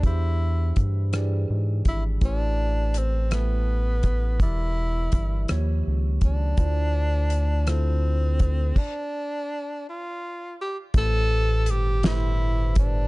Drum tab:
CC |------|------|------|------|
HH |x-xx-x|x-xx-x|x-xx-x|x-xx-x|
SD |---r--|---r--|---r--|---r--|
BD |o-o--o|o----o|o-o--o|o----o|

CC |x-----|------|
HH |------|x-xx-x|
SD |------|---o--|
BD |o-----|o----o|